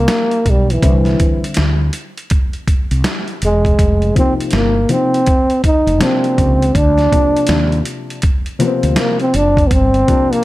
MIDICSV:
0, 0, Header, 1, 5, 480
1, 0, Start_track
1, 0, Tempo, 740741
1, 535, Time_signature, 4, 2, 24, 8
1, 6766, End_track
2, 0, Start_track
2, 0, Title_t, "Trombone"
2, 0, Program_c, 0, 57
2, 0, Note_on_c, 0, 58, 101
2, 321, Note_on_c, 0, 55, 83
2, 331, Note_off_c, 0, 58, 0
2, 468, Note_on_c, 0, 52, 76
2, 478, Note_off_c, 0, 55, 0
2, 936, Note_off_c, 0, 52, 0
2, 2234, Note_on_c, 0, 56, 83
2, 2679, Note_off_c, 0, 56, 0
2, 2711, Note_on_c, 0, 60, 83
2, 2815, Note_off_c, 0, 60, 0
2, 2946, Note_on_c, 0, 58, 85
2, 3181, Note_on_c, 0, 60, 101
2, 3191, Note_off_c, 0, 58, 0
2, 3658, Note_off_c, 0, 60, 0
2, 3665, Note_on_c, 0, 63, 92
2, 3902, Note_on_c, 0, 60, 88
2, 3912, Note_off_c, 0, 63, 0
2, 4384, Note_on_c, 0, 62, 105
2, 4394, Note_off_c, 0, 60, 0
2, 5099, Note_off_c, 0, 62, 0
2, 5828, Note_on_c, 0, 58, 82
2, 5961, Note_off_c, 0, 58, 0
2, 5969, Note_on_c, 0, 60, 90
2, 6063, Note_on_c, 0, 62, 100
2, 6073, Note_off_c, 0, 60, 0
2, 6266, Note_on_c, 0, 59, 74
2, 6276, Note_off_c, 0, 62, 0
2, 6301, Note_on_c, 0, 60, 102
2, 6311, Note_off_c, 0, 59, 0
2, 6691, Note_on_c, 0, 58, 101
2, 6701, Note_off_c, 0, 60, 0
2, 6766, Note_off_c, 0, 58, 0
2, 6766, End_track
3, 0, Start_track
3, 0, Title_t, "Grand piano"
3, 0, Program_c, 1, 0
3, 534, Note_on_c, 1, 50, 66
3, 534, Note_on_c, 1, 55, 62
3, 538, Note_on_c, 1, 60, 62
3, 539, Note_on_c, 1, 64, 73
3, 1218, Note_off_c, 1, 50, 0
3, 1218, Note_off_c, 1, 55, 0
3, 1220, Note_off_c, 1, 60, 0
3, 1221, Note_off_c, 1, 64, 0
3, 2689, Note_on_c, 1, 48, 66
3, 2692, Note_on_c, 1, 53, 61
3, 2694, Note_on_c, 1, 58, 54
3, 2695, Note_on_c, 1, 63, 70
3, 3051, Note_off_c, 1, 48, 0
3, 3053, Note_off_c, 1, 53, 0
3, 3054, Note_off_c, 1, 58, 0
3, 3055, Note_off_c, 1, 63, 0
3, 3168, Note_on_c, 1, 48, 63
3, 3170, Note_on_c, 1, 53, 56
3, 3173, Note_on_c, 1, 58, 59
3, 3175, Note_on_c, 1, 63, 73
3, 3357, Note_off_c, 1, 48, 0
3, 3358, Note_off_c, 1, 53, 0
3, 3360, Note_off_c, 1, 58, 0
3, 3360, Note_off_c, 1, 63, 0
3, 3885, Note_on_c, 1, 48, 68
3, 3887, Note_on_c, 1, 53, 60
3, 3890, Note_on_c, 1, 58, 64
3, 3894, Note_on_c, 1, 62, 75
3, 4370, Note_off_c, 1, 48, 0
3, 4371, Note_off_c, 1, 53, 0
3, 4372, Note_off_c, 1, 58, 0
3, 4374, Note_off_c, 1, 62, 0
3, 4610, Note_on_c, 1, 48, 57
3, 4612, Note_on_c, 1, 53, 52
3, 4614, Note_on_c, 1, 58, 53
3, 4617, Note_on_c, 1, 62, 62
3, 5296, Note_off_c, 1, 48, 0
3, 5297, Note_off_c, 1, 53, 0
3, 5298, Note_off_c, 1, 58, 0
3, 5300, Note_off_c, 1, 62, 0
3, 5566, Note_on_c, 1, 48, 76
3, 5569, Note_on_c, 1, 53, 75
3, 5573, Note_on_c, 1, 58, 69
3, 5577, Note_on_c, 1, 59, 72
3, 5619, Note_on_c, 1, 60, 86
3, 5628, Note_off_c, 1, 59, 0
3, 6254, Note_off_c, 1, 48, 0
3, 6256, Note_off_c, 1, 53, 0
3, 6258, Note_off_c, 1, 58, 0
3, 6281, Note_off_c, 1, 60, 0
3, 6528, Note_on_c, 1, 48, 68
3, 6530, Note_on_c, 1, 53, 61
3, 6533, Note_on_c, 1, 58, 62
3, 6535, Note_on_c, 1, 62, 75
3, 6717, Note_off_c, 1, 48, 0
3, 6718, Note_off_c, 1, 53, 0
3, 6719, Note_off_c, 1, 58, 0
3, 6720, Note_off_c, 1, 62, 0
3, 6766, End_track
4, 0, Start_track
4, 0, Title_t, "Fretless electric bass"
4, 0, Program_c, 2, 35
4, 296, Note_on_c, 2, 35, 75
4, 499, Note_off_c, 2, 35, 0
4, 537, Note_on_c, 2, 36, 92
4, 740, Note_off_c, 2, 36, 0
4, 1021, Note_on_c, 2, 38, 81
4, 1222, Note_off_c, 2, 38, 0
4, 1887, Note_on_c, 2, 36, 70
4, 1963, Note_off_c, 2, 36, 0
4, 2219, Note_on_c, 2, 28, 87
4, 2421, Note_off_c, 2, 28, 0
4, 2456, Note_on_c, 2, 29, 99
4, 2659, Note_off_c, 2, 29, 0
4, 2934, Note_on_c, 2, 31, 83
4, 3138, Note_off_c, 2, 31, 0
4, 3802, Note_on_c, 2, 29, 83
4, 3879, Note_off_c, 2, 29, 0
4, 4136, Note_on_c, 2, 37, 94
4, 4339, Note_off_c, 2, 37, 0
4, 4374, Note_on_c, 2, 38, 93
4, 4578, Note_off_c, 2, 38, 0
4, 4852, Note_on_c, 2, 39, 85
4, 5057, Note_off_c, 2, 39, 0
4, 5724, Note_on_c, 2, 38, 74
4, 5801, Note_off_c, 2, 38, 0
4, 6054, Note_on_c, 2, 30, 79
4, 6258, Note_off_c, 2, 30, 0
4, 6294, Note_on_c, 2, 31, 86
4, 6498, Note_off_c, 2, 31, 0
4, 6766, End_track
5, 0, Start_track
5, 0, Title_t, "Drums"
5, 52, Note_on_c, 9, 38, 109
5, 54, Note_on_c, 9, 42, 79
5, 116, Note_off_c, 9, 38, 0
5, 119, Note_off_c, 9, 42, 0
5, 204, Note_on_c, 9, 42, 32
5, 268, Note_off_c, 9, 42, 0
5, 296, Note_on_c, 9, 36, 84
5, 296, Note_on_c, 9, 42, 75
5, 361, Note_off_c, 9, 36, 0
5, 361, Note_off_c, 9, 42, 0
5, 454, Note_on_c, 9, 42, 41
5, 519, Note_off_c, 9, 42, 0
5, 535, Note_on_c, 9, 36, 95
5, 537, Note_on_c, 9, 42, 85
5, 599, Note_off_c, 9, 36, 0
5, 602, Note_off_c, 9, 42, 0
5, 681, Note_on_c, 9, 38, 30
5, 687, Note_on_c, 9, 42, 29
5, 746, Note_off_c, 9, 38, 0
5, 752, Note_off_c, 9, 42, 0
5, 775, Note_on_c, 9, 42, 76
5, 777, Note_on_c, 9, 36, 86
5, 840, Note_off_c, 9, 42, 0
5, 842, Note_off_c, 9, 36, 0
5, 934, Note_on_c, 9, 42, 49
5, 999, Note_off_c, 9, 42, 0
5, 1000, Note_on_c, 9, 42, 82
5, 1016, Note_on_c, 9, 38, 99
5, 1065, Note_off_c, 9, 42, 0
5, 1081, Note_off_c, 9, 38, 0
5, 1250, Note_on_c, 9, 42, 79
5, 1315, Note_off_c, 9, 42, 0
5, 1410, Note_on_c, 9, 42, 35
5, 1474, Note_off_c, 9, 42, 0
5, 1491, Note_on_c, 9, 42, 74
5, 1498, Note_on_c, 9, 36, 92
5, 1555, Note_off_c, 9, 42, 0
5, 1563, Note_off_c, 9, 36, 0
5, 1642, Note_on_c, 9, 42, 29
5, 1707, Note_off_c, 9, 42, 0
5, 1734, Note_on_c, 9, 36, 87
5, 1735, Note_on_c, 9, 42, 75
5, 1798, Note_off_c, 9, 36, 0
5, 1800, Note_off_c, 9, 42, 0
5, 1887, Note_on_c, 9, 42, 51
5, 1951, Note_off_c, 9, 42, 0
5, 1972, Note_on_c, 9, 38, 112
5, 1974, Note_on_c, 9, 42, 81
5, 2036, Note_off_c, 9, 38, 0
5, 2039, Note_off_c, 9, 42, 0
5, 2123, Note_on_c, 9, 42, 31
5, 2188, Note_off_c, 9, 42, 0
5, 2215, Note_on_c, 9, 42, 79
5, 2280, Note_off_c, 9, 42, 0
5, 2364, Note_on_c, 9, 36, 77
5, 2372, Note_on_c, 9, 42, 41
5, 2429, Note_off_c, 9, 36, 0
5, 2437, Note_off_c, 9, 42, 0
5, 2455, Note_on_c, 9, 36, 102
5, 2456, Note_on_c, 9, 42, 85
5, 2519, Note_off_c, 9, 36, 0
5, 2521, Note_off_c, 9, 42, 0
5, 2605, Note_on_c, 9, 42, 30
5, 2669, Note_off_c, 9, 42, 0
5, 2698, Note_on_c, 9, 36, 82
5, 2698, Note_on_c, 9, 42, 76
5, 2762, Note_off_c, 9, 42, 0
5, 2763, Note_off_c, 9, 36, 0
5, 2854, Note_on_c, 9, 42, 53
5, 2919, Note_off_c, 9, 42, 0
5, 2920, Note_on_c, 9, 42, 87
5, 2936, Note_on_c, 9, 38, 97
5, 2985, Note_off_c, 9, 42, 0
5, 3000, Note_off_c, 9, 38, 0
5, 3169, Note_on_c, 9, 42, 75
5, 3234, Note_off_c, 9, 42, 0
5, 3333, Note_on_c, 9, 42, 39
5, 3397, Note_off_c, 9, 42, 0
5, 3412, Note_on_c, 9, 42, 73
5, 3418, Note_on_c, 9, 36, 87
5, 3476, Note_off_c, 9, 42, 0
5, 3482, Note_off_c, 9, 36, 0
5, 3563, Note_on_c, 9, 42, 31
5, 3628, Note_off_c, 9, 42, 0
5, 3653, Note_on_c, 9, 36, 86
5, 3655, Note_on_c, 9, 42, 71
5, 3718, Note_off_c, 9, 36, 0
5, 3719, Note_off_c, 9, 42, 0
5, 3807, Note_on_c, 9, 42, 49
5, 3871, Note_off_c, 9, 42, 0
5, 3892, Note_on_c, 9, 38, 106
5, 3894, Note_on_c, 9, 42, 84
5, 3957, Note_off_c, 9, 38, 0
5, 3959, Note_off_c, 9, 42, 0
5, 4044, Note_on_c, 9, 42, 33
5, 4109, Note_off_c, 9, 42, 0
5, 4135, Note_on_c, 9, 36, 81
5, 4135, Note_on_c, 9, 42, 74
5, 4200, Note_off_c, 9, 36, 0
5, 4200, Note_off_c, 9, 42, 0
5, 4293, Note_on_c, 9, 42, 44
5, 4357, Note_off_c, 9, 42, 0
5, 4373, Note_on_c, 9, 36, 96
5, 4377, Note_on_c, 9, 42, 78
5, 4438, Note_off_c, 9, 36, 0
5, 4442, Note_off_c, 9, 42, 0
5, 4521, Note_on_c, 9, 38, 29
5, 4526, Note_on_c, 9, 42, 31
5, 4585, Note_off_c, 9, 38, 0
5, 4591, Note_off_c, 9, 42, 0
5, 4617, Note_on_c, 9, 36, 80
5, 4618, Note_on_c, 9, 42, 81
5, 4681, Note_off_c, 9, 36, 0
5, 4682, Note_off_c, 9, 42, 0
5, 4773, Note_on_c, 9, 42, 54
5, 4837, Note_off_c, 9, 42, 0
5, 4838, Note_on_c, 9, 42, 87
5, 4854, Note_on_c, 9, 38, 97
5, 4903, Note_off_c, 9, 42, 0
5, 4919, Note_off_c, 9, 38, 0
5, 5005, Note_on_c, 9, 42, 31
5, 5069, Note_off_c, 9, 42, 0
5, 5090, Note_on_c, 9, 42, 78
5, 5155, Note_off_c, 9, 42, 0
5, 5251, Note_on_c, 9, 42, 35
5, 5316, Note_off_c, 9, 42, 0
5, 5327, Note_on_c, 9, 42, 72
5, 5335, Note_on_c, 9, 36, 89
5, 5392, Note_off_c, 9, 42, 0
5, 5400, Note_off_c, 9, 36, 0
5, 5482, Note_on_c, 9, 42, 32
5, 5546, Note_off_c, 9, 42, 0
5, 5572, Note_on_c, 9, 42, 74
5, 5637, Note_off_c, 9, 42, 0
5, 5723, Note_on_c, 9, 42, 50
5, 5787, Note_off_c, 9, 42, 0
5, 5807, Note_on_c, 9, 38, 113
5, 5809, Note_on_c, 9, 42, 82
5, 5872, Note_off_c, 9, 38, 0
5, 5874, Note_off_c, 9, 42, 0
5, 5959, Note_on_c, 9, 42, 32
5, 6023, Note_off_c, 9, 42, 0
5, 6051, Note_on_c, 9, 42, 77
5, 6116, Note_off_c, 9, 42, 0
5, 6202, Note_on_c, 9, 36, 71
5, 6210, Note_on_c, 9, 42, 41
5, 6267, Note_off_c, 9, 36, 0
5, 6275, Note_off_c, 9, 42, 0
5, 6291, Note_on_c, 9, 36, 88
5, 6291, Note_on_c, 9, 42, 81
5, 6356, Note_off_c, 9, 36, 0
5, 6356, Note_off_c, 9, 42, 0
5, 6442, Note_on_c, 9, 42, 30
5, 6507, Note_off_c, 9, 42, 0
5, 6533, Note_on_c, 9, 42, 81
5, 6534, Note_on_c, 9, 36, 83
5, 6598, Note_off_c, 9, 42, 0
5, 6599, Note_off_c, 9, 36, 0
5, 6692, Note_on_c, 9, 42, 53
5, 6756, Note_off_c, 9, 42, 0
5, 6766, End_track
0, 0, End_of_file